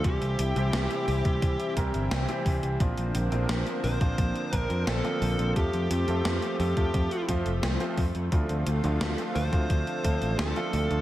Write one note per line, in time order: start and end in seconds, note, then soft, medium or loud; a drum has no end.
0.00 11.01 C4 medium
0.04 0.17 C2 loud
0.04 2.77 C3 medium
0.04 0.36 E3 medium
0.04 0.36 G3 medium
0.04 0.36 C4 medium
0.04 2.77 E4 medium
0.04 0.36 E4 medium
0.04 2.77 G4 medium
0.04 0.36 G4 medium
0.04 1.04 G4 loud
0.04 kick loud
0.04 closed hi-hat medium
0.22 0.35 C2 medium
0.22 closed hi-hat soft
0.39 0.52 C2 medium
0.39 closed hi-hat loud
0.56 0.69 C2 medium
0.56 1.21 E3 medium
0.56 1.21 G3 medium
0.56 1.21 C4 medium
0.56 1.21 E4 medium
0.56 1.21 G4 medium
0.56 closed hi-hat soft
0.73 0.86 C2 loud
0.73 snare loud
0.73 closed hi-hat medium
0.91 closed hi-hat soft
1.08 1.21 C2 medium
1.08 1.73 G4 medium
1.08 open hi-hat medium
1.25 1.38 C2 medium
1.25 1.73 E3 medium
1.25 1.73 G3 medium
1.25 1.73 C4 medium
1.25 1.73 E4 medium
1.25 1.73 G4 medium
1.25 kick loud
1.25 closed hi-hat soft
1.42 1.55 C2 loud
1.42 kick loud
1.42 closed hi-hat medium
1.60 closed hi-hat soft
1.77 1.90 C2 medium
1.77 2.24 E3 medium
1.77 2.24 G3 medium
1.77 2.24 C4 medium
1.77 2.24 E4 medium
1.77 2.24 A#4 medium
1.77 kick medium
1.77 closed hi-hat medium
1.94 2.07 G1 medium
1.94 closed hi-hat soft
2.11 2.24 C2 loud
2.11 snare loud
2.11 closed hi-hat medium
2.28 2.76 E3 loud
2.28 2.76 G3 medium
2.28 2.76 C4 medium
2.28 2.76 E4 medium
2.28 2.76 G4 loud
2.28 closed hi-hat soft
2.46 2.59 C2 medium
2.46 kick loud
2.46 open hi-hat medium
2.63 2.76 C2 medium
2.63 closed hi-hat soft
2.80 2.93 A#1 loud
2.80 5.53 D3 medium
2.80 3.11 F3 medium
2.80 3.11 A#3 medium
2.80 5.53 A#3 medium
2.80 3.11 C4 medium
2.80 3.11 D4 medium
2.80 3.11 F4 medium
2.80 kick loud
2.80 closed hi-hat medium
2.98 3.11 A#1 medium
2.98 closed hi-hat soft
3.15 3.28 A#1 loud
3.15 closed hi-hat loud
3.32 3.45 A#1 medium
3.32 3.97 F3 medium
3.32 3.97 A#3 medium
3.32 3.97 C4 medium
3.32 3.97 D4 medium
3.32 3.97 F4 medium
3.32 closed hi-hat soft
3.49 3.62 A#1 loud
3.49 snare loud
3.49 closed hi-hat medium
3.67 closed hi-hat soft
3.84 3.97 A#1 medium
3.84 4.58 C5 loud
3.84 open hi-hat medium
4.01 4.14 A#1 medium
4.01 4.48 F3 medium
4.01 4.49 A#3 medium
4.01 4.49 C4 medium
4.01 4.49 D4 medium
4.01 4.49 F4 medium
4.01 kick loud
4.01 closed hi-hat soft
4.18 4.31 A#1 loud
4.18 kick loud
4.18 closed hi-hat medium
4.36 closed hi-hat soft
4.53 4.66 A#1 medium
4.53 5.00 F3 medium
4.53 5.00 A#3 medium
4.53 5.00 C4 medium
4.53 5.00 D4 medium
4.53 5.00 A#4 medium
4.53 kick medium
4.53 closed hi-hat medium
4.58 4.87 A#4 loud
4.70 4.83 F2 medium
4.70 closed hi-hat soft
4.87 5.00 A#1 loud
4.87 5.52 A4 loud
4.87 snare loud
4.87 closed hi-hat medium
5.04 5.52 F3 medium
5.04 5.52 A#3 medium
5.04 5.52 C4 medium
5.04 5.52 D4 medium
5.04 5.52 F4 loud
5.04 closed hi-hat soft
5.22 5.35 A#1 medium
5.22 open hi-hat medium
5.39 5.52 A#1 medium
5.39 closed hi-hat soft
5.56 5.69 F2 loud
5.56 8.29 F3 medium
5.56 5.87 F3 medium
5.56 11.01 A3 medium
5.56 5.87 A3 medium
5.56 5.87 C4 medium
5.56 5.87 F4 medium
5.56 6.55 G4 medium
5.56 5.87 A4 medium
5.56 kick loud
5.56 closed hi-hat medium
5.73 5.86 F2 medium
5.73 closed hi-hat soft
5.91 6.04 F2 loud
5.91 closed hi-hat medium
6.08 6.21 F2 medium
6.08 6.73 F3 medium
6.08 6.73 A3 medium
6.08 6.73 C4 medium
6.08 6.73 F4 medium
6.08 6.73 A4 medium
6.08 closed hi-hat soft
6.25 6.38 F2 loud
6.25 snare loud
6.25 closed hi-hat medium
6.42 closed hi-hat soft
6.60 6.73 F2 medium
6.60 7.25 G4 medium
6.60 open hi-hat medium
6.77 6.90 F2 medium
6.77 7.24 F3 medium
6.77 7.24 A3 medium
6.77 7.24 C4 medium
6.77 7.24 F4 medium
6.77 7.24 A4 medium
6.77 kick loud
6.77 closed hi-hat soft
6.94 7.07 F2 loud
6.94 kick loud
6.94 closed hi-hat medium
7.11 closed hi-hat soft
7.28 7.42 F2 medium
7.28 7.48 F3 medium
7.28 7.48 A3 medium
7.28 7.48 C4 medium
7.28 7.48 F4 medium
7.28 7.48 C5 loud
7.28 kick medium
7.28 closed hi-hat medium
7.46 7.59 F1 medium
7.46 closed hi-hat soft
7.63 7.76 C2 loud
7.63 snare loud
7.63 closed hi-hat medium
7.80 8.00 F3 loud
7.80 8.00 A3 medium
7.80 8.00 C4 medium
7.80 8.00 F4 medium
7.80 8.00 C5 loud
7.80 closed hi-hat soft
7.98 8.11 F2 loud
7.98 kick loud
7.98 open hi-hat medium
8.15 8.28 F2 medium
8.15 closed hi-hat soft
8.32 8.45 D2 loud
8.32 11.01 D3 medium
8.32 8.63 F3 medium
8.32 8.63 A3 medium
8.32 8.63 C4 medium
8.32 8.63 D4 medium
8.32 11.01 F4 medium
8.32 8.63 F4 medium
8.32 kick loud
8.32 closed hi-hat medium
8.49 8.62 D2 medium
8.49 closed hi-hat soft
8.67 8.80 D2 medium
8.67 closed hi-hat medium
8.84 8.97 D2 medium
8.84 9.49 F3 medium
8.84 9.49 A3 medium
8.84 9.49 C4 medium
8.84 9.49 D4 medium
8.84 9.49 F4 medium
8.84 closed hi-hat soft
9.01 9.14 D2 loud
9.01 snare loud
9.01 closed hi-hat medium
9.18 closed hi-hat soft
9.35 9.49 D2 medium
9.35 10.39 C5 loud
9.35 open hi-hat medium
9.53 9.66 D2 medium
9.53 10.00 F3 medium
9.53 10.00 A3 medium
9.53 10.00 C4 medium
9.53 10.00 D4 medium
9.53 10.00 F4 medium
9.53 kick loud
9.53 closed hi-hat soft
9.70 9.83 D2 loud
9.70 kick loud
9.70 closed hi-hat medium
9.87 closed hi-hat soft
10.04 10.17 D2 medium
10.04 10.52 F3 medium
10.04 10.52 A3 medium
10.04 10.52 C4 medium
10.04 10.52 D4 medium
10.04 10.52 A4 medium
10.04 kick medium
10.04 closed hi-hat medium
10.22 10.35 A1 medium
10.22 closed hi-hat soft
10.39 10.52 D2 loud
10.39 11.01 A4 medium
10.39 snare loud
10.39 closed hi-hat medium
10.56 11.01 F3 loud
10.56 11.01 A3 medium
10.56 11.01 C4 medium
10.56 11.01 D4 medium
10.56 11.01 F4 loud
10.56 closed hi-hat soft
10.73 10.86 D2 medium
10.73 open hi-hat medium
10.91 11.01 D2 medium
10.91 closed hi-hat soft